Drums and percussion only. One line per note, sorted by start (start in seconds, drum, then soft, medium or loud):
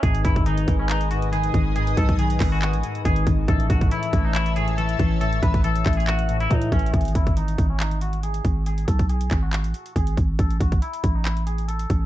0.03 kick loud
0.03 closed hi-hat medium
0.15 closed hi-hat medium
0.25 kick loud
0.25 closed hi-hat medium
0.36 kick loud
0.36 closed hi-hat soft
0.46 closed hi-hat medium
0.58 closed hi-hat medium
0.68 kick loud
0.68 closed hi-hat medium
0.89 clap loud
0.89 closed hi-hat medium
1.01 closed hi-hat medium
1.11 closed hi-hat medium
1.22 closed hi-hat medium
1.33 closed hi-hat medium
1.44 closed hi-hat medium
1.54 kick medium
1.54 closed hi-hat medium
1.76 closed hi-hat medium
1.87 closed hi-hat medium
1.97 kick loud
1.97 closed hi-hat medium
2.09 kick loud
2.09 closed hi-hat soft
2.19 closed hi-hat medium
2.30 closed hi-hat medium
2.40 kick loud
2.40 clap loud
2.40 open hi-hat medium
2.62 clap loud
2.62 closed hi-hat medium
2.73 closed hi-hat medium
2.83 closed hi-hat medium
2.95 closed hi-hat medium
3.05 kick medium
3.05 closed hi-hat medium
3.16 closed hi-hat medium
3.27 kick loud
3.27 closed hi-hat medium
3.48 kick loud
3.48 closed hi-hat medium
3.60 closed hi-hat medium
3.70 kick loud
3.70 closed hi-hat medium
3.81 kick loud
3.81 closed hi-hat soft
3.91 closed hi-hat medium
4.03 closed hi-hat medium
4.13 kick loud
4.13 closed hi-hat medium
4.35 clap loud
4.35 closed hi-hat medium
4.46 closed hi-hat medium
4.56 closed hi-hat medium
4.68 closed hi-hat medium
4.78 closed hi-hat medium
4.89 closed hi-hat medium
4.99 kick loud
4.99 closed hi-hat medium
5.21 closed hi-hat medium
5.33 closed hi-hat medium
5.43 kick loud
5.43 closed hi-hat medium
5.54 kick loud
5.54 closed hi-hat soft
5.64 closed hi-hat medium
5.75 closed hi-hat medium
5.86 kick loud
5.86 clap loud
5.86 closed hi-hat medium
5.86 open hi-hat medium
5.93 closed hi-hat medium
6.00 closed hi-hat medium
6.07 clap loud
6.07 closed hi-hat medium
6.19 closed hi-hat soft
6.29 closed hi-hat medium
6.40 closed hi-hat medium
6.51 kick loud
6.51 closed hi-hat medium
6.62 closed hi-hat medium
6.72 kick loud
6.72 closed hi-hat soft
6.79 closed hi-hat soft
6.86 closed hi-hat medium
6.94 kick loud
6.94 closed hi-hat medium
7.01 closed hi-hat medium
7.05 closed hi-hat medium
7.08 closed hi-hat medium
7.15 kick medium
7.15 closed hi-hat medium
7.27 kick loud
7.27 closed hi-hat soft
7.37 closed hi-hat medium
7.48 closed hi-hat medium
7.58 kick loud
7.58 closed hi-hat medium
7.80 clap loud
7.80 closed hi-hat medium
7.91 closed hi-hat soft
8.01 closed hi-hat medium
8.13 closed hi-hat medium
8.23 closed hi-hat medium
8.34 closed hi-hat medium
8.45 kick medium
8.45 closed hi-hat medium
8.66 closed hi-hat medium
8.78 closed hi-hat medium
8.88 kick loud
8.88 closed hi-hat medium
8.99 kick loud
8.99 closed hi-hat soft
9.09 closed hi-hat medium
9.21 closed hi-hat medium
9.31 kick loud
9.31 clap medium
9.31 closed hi-hat medium
9.53 clap loud
9.53 closed hi-hat medium
9.64 closed hi-hat soft
9.74 closed hi-hat medium
9.86 closed hi-hat medium
9.96 kick medium
9.96 closed hi-hat medium
10.07 closed hi-hat medium
10.17 kick medium
10.17 closed hi-hat medium
10.39 kick loud
10.39 closed hi-hat medium
10.50 closed hi-hat medium
10.60 kick loud
10.60 closed hi-hat medium
10.72 kick loud
10.72 closed hi-hat soft
10.82 closed hi-hat medium
10.93 closed hi-hat medium
11.04 kick loud
11.04 closed hi-hat medium
11.25 clap loud
11.25 closed hi-hat medium
11.37 closed hi-hat soft
11.47 closed hi-hat medium
11.58 closed hi-hat medium
11.69 closed hi-hat medium
11.79 closed hi-hat medium
11.90 kick medium
11.90 closed hi-hat medium